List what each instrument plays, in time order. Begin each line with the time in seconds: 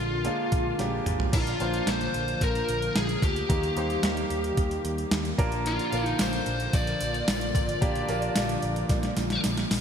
Already playing: grand piano A#2 G#3 A#3 D4 F4, analog synth pad D3 G#3 A#3 F4, lead electric guitar F4
0.00 picked electric bass A#1
0.24 grand piano G#3 A#3 D4 F4, closed hi-hat
0.52 picked electric bass A#1, kick, closed hi-hat
0.79 picked electric bass A#1, grand piano G#3 A#3 D4 G4, snare, closed hi-hat
1.06 picked electric bass G#1, closed hi-hat, mid tom
1.20 floor tom
1.32 picked electric bass A#1, grand piano A#2 A#3 D4 F4 A#4, analog synth pad D3 F3 A#3 F4, lead electric guitar F4, kick, closed hi-hat, crash
1.47 closed hi-hat
1.60 picked electric bass A#1, grand piano A#3 D4 F4 C5, closed hi-hat
1.74 closed hi-hat
1.87 picked electric bass A#1, lead electric guitar C5, snare, closed hi-hat
2.01 closed hi-hat
2.14 picked electric bass A#1, closed hi-hat
2.28 closed hi-hat
2.41 picked electric bass A#1, lead electric guitar A#4, kick, closed hi-hat
2.55 closed hi-hat
2.69 picked electric bass A#1, closed hi-hat
2.82 closed hi-hat
2.96 picked electric bass A#1, lead electric guitar G#4, snare, closed hi-hat
3.09 closed hi-hat
3.22 picked electric bass D2, lead electric guitar G4, kick, closed hi-hat
3.36 closed hi-hat
3.49 picked electric bass D#2, analog synth pad D#3 G3 A#3 G4, grand piano D#3 A#3 D#4 G4 A#4, kick, closed hi-hat
3.63 closed hi-hat
3.76 picked electric bass D#2, grand piano A#3 D#4 G4 C5, closed hi-hat
3.90 closed hi-hat
4.03 picked electric bass D#2, snare, closed hi-hat
4.17 closed hi-hat
4.30 picked electric bass D#2, closed hi-hat
4.44 closed hi-hat
4.57 picked electric bass D#2, kick, closed hi-hat
4.71 closed hi-hat
4.85 picked electric bass D#2, closed hi-hat
4.98 closed hi-hat
5.11 picked electric bass D#2, snare, closed hi-hat
5.25 closed hi-hat
5.38 picked electric bass A#1, grand piano A#2 A#3 D4 F4 A#4, analog synth pad D3 F3 F4, kick, closed hi-hat
5.52 closed hi-hat
5.66 lead electric guitar F4, closed hi-hat
5.79 closed hi-hat
5.92 picked electric bass A#1, grand piano A#3 D4 F4 A#4, closed hi-hat, tambourine
6.06 closed hi-hat
6.19 picked electric bass A#1, lead electric guitar C5, snare, closed hi-hat, tambourine
6.33 closed hi-hat
6.46 picked electric bass A#1, closed hi-hat, tambourine
6.60 closed hi-hat
6.73 picked electric bass A#1, lead electric guitar D5, kick, closed hi-hat, tambourine
6.87 closed hi-hat
7.01 picked electric bass A#1, closed hi-hat, tambourine
7.14 closed hi-hat
7.28 picked electric bass A#1, snare, closed hi-hat, tambourine
7.41 closed hi-hat
7.55 picked electric bass G#1, grand piano A#2, kick, closed hi-hat, tambourine
7.69 closed hi-hat
7.81 picked electric bass A#1, grand piano A#3 D4 F4 G4, kick, closed hi-hat
7.95 closed hi-hat
8.08 picked electric bass A#1, grand piano A#3 D4 F4 A#4, closed hi-hat, tambourine
8.22 closed hi-hat
8.36 picked electric bass A#1, snare, closed hi-hat, tambourine
8.49 closed hi-hat
8.62 picked electric bass A#1, closed hi-hat
8.76 closed hi-hat
8.89 picked electric bass A#1, kick, snare, closed hi-hat, tambourine
9.03 snare, closed hi-hat
9.17 picked electric bass A#1, snare, closed hi-hat, tambourine
9.30 snare, closed hi-hat
9.44 picked electric bass A#1, snare, closed hi-hat, tambourine
9.57 snare, closed hi-hat
9.71 picked electric bass A#1, snare, open hi-hat, tambourine